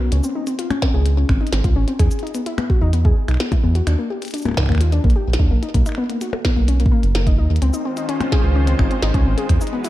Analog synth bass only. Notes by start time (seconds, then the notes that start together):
0.12 C#2
0.94 C#2
1.29 G#1
1.53 G#1
1.64 C#2
1.76 G#1
1.99 E2
2.82 E2
3.28 B1
3.64 E2
3.87 D#2
4.69 D#2
5.04 A#1
5.28 A#1
5.39 D#2
5.51 A#1
5.74 B1
6.56 B1
7.03 F#1
7.38 D#2
7.50 D#2
7.62 C#2
8.44 C#2
8.79 G#1
9.03 G#1
9.14 C#2
9.26 G#1
9.49 E2